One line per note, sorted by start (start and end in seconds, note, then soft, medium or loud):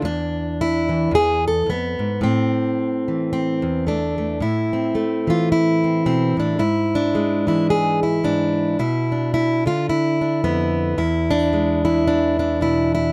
0.02 1.10 E2 medium
0.02 1.14 D4 loud
0.61 1.14 E4 loud
0.89 1.69 E3 medium
1.11 1.66 E2 medium
1.11 1.46 G#4 loud
1.48 1.69 A4 loud
1.66 1.99 F2 medium
1.66 2.23 B3 medium
1.99 2.22 G#2 medium
2.21 3.63 A2 medium
2.21 3.32 C4 medium
3.08 4.38 E3 medium
3.33 3.87 C4 medium
3.62 4.40 E2 medium
3.87 4.17 A3 soft
3.87 4.42 D4 medium
4.18 4.38 A3 soft
4.40 6.05 A2 medium
4.40 5.29 E4 medium
4.73 5.83 C4 soft
4.95 6.57 A3 soft
5.27 6.57 E3 medium
5.27 5.51 F4 medium
5.52 6.58 E4 loud
5.84 6.05 C4 soft
6.06 6.37 B2 medium
6.06 6.38 C4 medium
6.37 6.60 A2 medium
6.37 6.61 D4 medium
6.59 8.22 G#2 medium
6.59 7.47 E4 medium
6.95 8.03 D4 medium
7.15 8.76 G#3 soft
7.47 8.76 E3 medium
7.47 7.70 E4 medium
7.70 8.02 G#4 loud
8.03 8.78 E4 medium
8.24 8.76 G#2 medium
8.24 8.79 D4 medium
8.79 9.66 B2 medium
8.79 9.33 E4 medium
9.12 10.20 D4 soft
9.34 9.66 E4 loud
9.66 10.98 D3 medium
9.66 9.89 F4 medium
9.89 10.97 E4 medium
10.21 10.43 D4 medium
10.44 10.95 F2 medium
10.44 10.98 B3 medium
10.98 13.12 E2 medium
10.98 11.83 E4 medium
11.31 12.06 D4 medium
11.53 13.12 G#3 soft
11.85 13.12 E3 medium
11.85 12.61 E4 medium
12.07 12.38 D4 medium
12.39 13.12 D4 medium
12.61 13.12 B2 medium
12.61 12.93 E4 medium
12.95 13.12 E4 medium